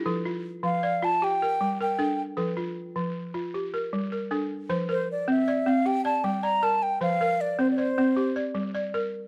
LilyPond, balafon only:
<<
  \new Staff \with { instrumentName = "Balafon" } { \time 12/8 \key f \major \tempo 4. = 104 << { a'8 f'4. d''4 g'8 bes'4 bes'8 a'4 | a'8 f'4. r4 g'8 bes'4 bes'8 a'4 | c''8 bes'4. d''4 g'8 d''4 d''4. | c''8 bes'4. d''4 g'8 d''4 d''4. | } \\ { e'16 r1 r4. r16 | r1. | r1. | r1. | } >> }
  \new Staff \with { instrumentName = "Balafon" } { \time 12/8 \key f \major f4 r8 f4 f'8 r4 g4 d'4 | f4 r8 f4 f'8 r4 g4 d'4 | f4 r8 c'4 c'8 r4 g4 bes'4 | f4 r8 c'4 c'8 r4 g4 bes'4 | }
>>